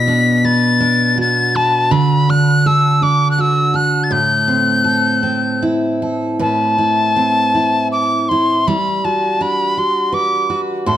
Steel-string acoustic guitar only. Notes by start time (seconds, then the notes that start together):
Already playing: B2 B4
0.07 D4
0.44 B4
0.80 D4
1.18 F#4
1.55 B4
1.91 D3
2.29 D4
2.66 A4
3.02 D4
3.38 F#4
3.74 A4
4.11 A2
4.48 C4
4.84 A4
5.23 C4
5.63 E4
6.02 A4
6.39 A2 B4
6.78 E4
7.16 C4
7.55 E4
8.31 E4
8.68 G3
9.05 F#4
9.41 D4
9.77 F#4
10.12 B4
10.50 F#4
10.86 A2 A4